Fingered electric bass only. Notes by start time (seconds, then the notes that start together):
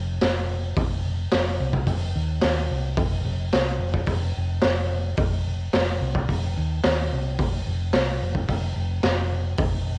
Already playing: F1
0.23 F1
0.76 F1
1.33 F1
1.60 C2
1.87 F1
2.16 D#2
2.43 D#2
2.71 C2
2.97 F1
3.24 F1
3.53 C2
3.79 F1
4.08 F1
4.37 F1
4.64 F1
5.18 F1
5.74 F1
6.01 C2
6.29 F1
6.57 D#2
6.85 D#2
7.13 C2
7.39 F1
7.67 F1
7.94 C2
8.22 F1
8.48 F1
8.76 F1
9.03 F1
9.59 F1